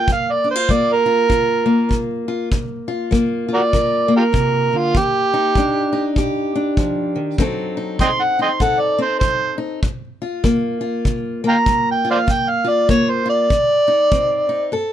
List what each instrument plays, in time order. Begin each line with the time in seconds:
Already playing: steel-string acoustic guitar A#3 F4 A4
0.07 steel-string acoustic guitar G2, kick
0.13 harmonica F5
0.32 harmonica D5
0.44 steel-string acoustic guitar D4
0.51 harmonica C5
0.56 steel-string acoustic guitar F4
0.69 steel-string acoustic guitar G3 A#3, harmonica D5, kick
0.93 harmonica A#4
1.06 steel-string acoustic guitar F4
1.29 steel-string acoustic guitar D3 F4, kick
1.66 steel-string acoustic guitar A#3
1.89 steel-string acoustic guitar G3, kick
2.28 steel-string acoustic guitar F4
2.52 steel-string acoustic guitar G2, kick
2.88 steel-string acoustic guitar F4
3.11 steel-string acoustic guitar G3 A#3, kick
3.48 steel-string acoustic guitar F4
3.54 harmonica F#4 A#4 D5
3.73 steel-string acoustic guitar D3 A#4, kick
4.08 steel-string acoustic guitar A#3
4.17 harmonica F4 G4 A#4
4.33 steel-string acoustic guitar C3, kick
4.73 steel-string acoustic guitar D3
4.78 harmonica F4
4.95 steel-string acoustic guitar D#3, harmonica G4, kick
5.34 steel-string acoustic guitar D#4
5.55 steel-string acoustic guitar G3 D4, kick
5.93 steel-string acoustic guitar D#4
6.16 steel-string acoustic guitar A#2 G4, kick
6.55 steel-string acoustic guitar D4
6.77 steel-string acoustic guitar F3, kick
7.16 steel-string acoustic guitar D#3
7.38 steel-string acoustic guitar D3 F#3 C4 D#4 A4, kick
7.77 steel-string acoustic guitar D#4
7.99 steel-string acoustic guitar F#3 C4, harmonica D#5 G5 C6, kick
8.23 harmonica F#5
8.39 steel-string acoustic guitar D#4, harmonica D#5 G5 C6
8.60 steel-string acoustic guitar A2 A4, harmonica F#5, kick
8.80 harmonica D5
8.98 steel-string acoustic guitar C4, harmonica C5
9.19 steel-string acoustic guitar F#3, harmonica C5, kick
9.58 steel-string acoustic guitar D#4
9.83 steel-string acoustic guitar G2, kick
10.22 steel-string acoustic guitar F4
10.44 steel-string acoustic guitar G3 A#3, kick
10.81 steel-string acoustic guitar F4
11.05 steel-string acoustic guitar D3, kick
11.44 steel-string acoustic guitar A#3
11.48 harmonica F5 G5 A#5
11.66 steel-string acoustic guitar G3, kick
11.91 harmonica G5
12.05 steel-string acoustic guitar F4
12.11 harmonica C5 D5 F5
12.27 steel-string acoustic guitar G2, kick
12.32 harmonica G5
12.49 harmonica F5
12.64 steel-string acoustic guitar F4
12.69 harmonica D5
12.88 steel-string acoustic guitar G3 A#3, harmonica C#5, kick
13.10 harmonica C5
13.26 steel-string acoustic guitar F4
13.30 harmonica D5
13.50 steel-string acoustic guitar D3, kick
13.88 steel-string acoustic guitar D#4
14.11 steel-string acoustic guitar F#3 C4, kick
14.49 steel-string acoustic guitar D#4
14.72 steel-string acoustic guitar G2 A4